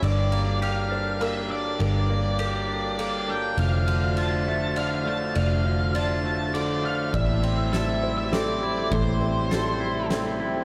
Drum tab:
RD |xxx-x-|x-x-x-|xxx-x-|x-x-x-|
SD |------|------|------|------|
BD |------|------|------|------|

RD |xxx-x-|x-x-x-|
SD |--o-o-|--o-o-|
BD |o-----|o-----|